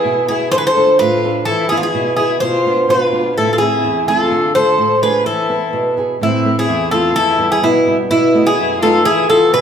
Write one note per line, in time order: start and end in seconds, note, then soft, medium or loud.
0.00 0.20 B3 soft
0.00 0.20 E4 soft
0.00 0.25 E4 medium
0.00 0.20 G#4 medium
0.00 0.27 G#4 medium
0.05 0.51 B2 medium
0.28 0.48 B3 soft
0.28 0.51 E4 medium
0.28 0.48 E4 soft
0.28 0.51 G#4 medium
0.28 0.48 G#4 medium
0.52 0.99 D3 medium
0.52 0.59 A4 medium
0.52 0.57 C5 loud
0.58 0.66 G#4 medium
0.58 0.65 B4 medium
0.66 0.97 A4 medium
0.66 0.99 C5 loud
0.76 1.14 D4 medium
0.76 1.14 F4 soft
0.76 1.14 A4 medium
0.99 1.46 A2 medium
0.99 1.43 F4 medium
0.99 1.43 B4 loud
1.24 1.43 D4 soft
1.24 1.43 F4 soft
1.24 1.43 A4 soft
1.45 1.93 E3 medium
1.45 1.69 E4 medium
1.45 1.68 A4 medium
1.69 2.09 B3 soft
1.69 1.77 E4 medium
1.69 2.09 E4 soft
1.69 1.77 G#4 medium
1.69 2.10 G#4 medium
1.77 1.84 D4 medium
1.77 1.84 F4 medium
1.83 2.16 E4 medium
1.83 2.15 G#4 medium
1.95 2.40 B2 medium
2.16 2.37 B3 soft
2.16 2.40 E4 medium
2.16 2.38 E4 soft
2.16 2.40 G#4 medium
2.16 2.38 G#4 medium
2.40 2.88 B2 medium
2.40 2.86 F4 medium
2.40 2.90 C5 medium
2.66 3.03 B3 soft
2.66 3.04 D4 soft
2.66 3.04 F4 medium
2.89 3.35 B2 medium
2.89 3.34 F4 medium
2.89 3.34 B4 medium
3.12 3.31 B3 soft
3.12 3.32 D4 soft
3.12 3.32 F4 medium
3.36 3.83 A2 medium
3.36 3.52 E4 medium
3.36 3.52 A4 medium
3.53 3.60 F4 medium
3.53 3.58 A4 medium
3.58 3.98 A3 medium
3.58 3.98 C4 soft
3.58 4.05 E4 medium
3.58 3.99 E4 medium
3.58 4.08 G#4 medium
3.84 4.30 E2 medium
4.08 4.26 A3 medium
4.08 4.27 C4 soft
4.08 4.27 E4 medium
4.08 4.52 F4 medium
4.08 4.52 A4 medium
4.31 4.77 D3 medium
4.55 4.93 A3 soft
4.55 4.93 D4 soft
4.55 4.93 F4 medium
4.55 4.99 A4 medium
4.55 4.99 C5 medium
4.78 5.24 A2 medium
5.02 5.21 A3 medium
5.02 5.21 D4 soft
5.02 5.21 F4 medium
5.02 5.25 G#4 medium
5.02 5.25 B4 medium
5.26 5.72 E3 medium
5.26 5.93 E4 medium
5.26 5.93 A4 medium
5.49 5.87 B3 soft
5.49 5.87 E4 soft
5.49 5.88 B4 soft
5.73 6.19 B2 medium
5.97 6.16 B3 medium
5.97 6.16 E4 soft
5.97 6.16 G#4 medium
6.21 6.67 A2 medium
6.21 6.54 C4 medium
6.21 6.55 E4 medium
6.45 6.83 A3 medium
6.45 6.83 C4 soft
6.45 6.83 E4 medium
6.58 6.90 E4 medium
6.58 6.91 G#4 medium
6.69 7.14 E2 medium
6.91 7.11 A3 soft
6.91 7.11 C4 soft
6.91 7.11 E4 medium
6.91 7.15 F4 medium
6.91 7.15 A4 medium
7.16 7.62 E2 medium
7.16 7.50 E4 medium
7.16 7.51 A4 loud
7.39 7.77 G3 medium
7.39 7.77 B3 soft
7.39 7.77 E4 medium
7.52 7.63 E4 medium
7.52 7.64 G#4 medium
7.63 8.09 B2 medium
7.63 7.97 B3 medium
7.63 7.96 E4 medium
7.87 8.06 G3 soft
7.87 8.06 B3 soft
7.87 8.06 E4 medium
8.10 8.57 B2 medium
8.10 8.43 B3 medium
8.10 8.47 E4 medium
8.35 8.72 A3 medium
8.35 8.73 B3 soft
8.35 8.73 D#5 medium
8.45 8.78 E4 medium
8.45 8.79 G#4 medium
8.59 9.05 F#2 medium
8.80 9.01 A3 medium
8.80 9.01 B3 soft
8.80 9.01 D#4 medium
8.80 9.03 F4 medium
8.80 9.05 A4 medium
9.05 9.52 E3 medium
9.05 9.28 E4 medium
9.05 9.29 G#4 loud
9.29 9.61 B3 medium
9.29 9.61 E4 soft
9.29 9.52 F4 medium
9.29 9.61 G#4 medium
9.29 9.53 A4 medium
9.53 9.61 B2 medium
9.53 9.61 G#4 medium
9.53 9.61 B4 loud